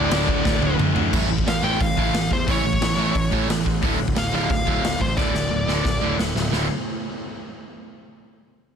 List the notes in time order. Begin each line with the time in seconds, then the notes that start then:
Already playing: D2 A2 D3 D5
0.10 D1 D2 A2 D3, snare, crash
0.28 D1 D2 A2 D3, kick
0.45 D1 D2 A2 D3, kick, snare
0.60 D1 D2 A2 D3, high tom
0.77 D1 D2 A2 D3, mid tom
0.94 D1 D2 A2 D3, floor tom
0.98 D2
1.12 A1 A2 E3 A3, kick, crash
1.28 A1 A2 E3
1.38 kick
1.45 A1 A2 E3 F5, snare, open hi-hat
1.62 A1 A2 E3 A3 G5
1.80 A1 A2 E3 F5, kick, open hi-hat
1.96 A1 A2 E3 A3, kick
2.13 A1 A2 E3, snare, open hi-hat
2.31 E2 A2 E3 C5, kick
2.46 A1 A2 E3 A3, kick, open hi-hat
2.51 C#5
2.63 A1 A2 E3
2.73 kick
2.80 A1 A2 E3, snare, open hi-hat
2.97 A1 A2 E3 A3
3.15 A1 A2 E3, kick, open hi-hat
3.30 A1 A2 E3 A3, kick
3.48 A1 A2 E3, snare, open hi-hat
3.65 A1 A2 E3, kick
3.81 D1 D2 A2 D3, kick, open hi-hat
3.99 D1 D2 A2
4.08 kick
4.16 D1 D2 A2 F5, snare, open hi-hat
4.32 D1 D2 A2 D3 F5
4.49 D1 D2 A2 F5, kick, open hi-hat
4.66 D1 D2 A2 D3, kick
4.83 D1 D2 A2, snare, open hi-hat
5.01 A1 D2 A2 C5, kick
5.17 D1 D2 A2 D3 D5, kick, snare
5.33 D1 D2 A2, snare
5.51 D1 D2 A2
5.67 D1 D2 A2 D3, snare
5.85 D1 D2 A2, kick, snare
6.01 D1 D2 A2 D3
6.19 D1 D2 A2, snare
6.35 D1 D2 A2, snare
6.52 D1 D2 A2 D3, snare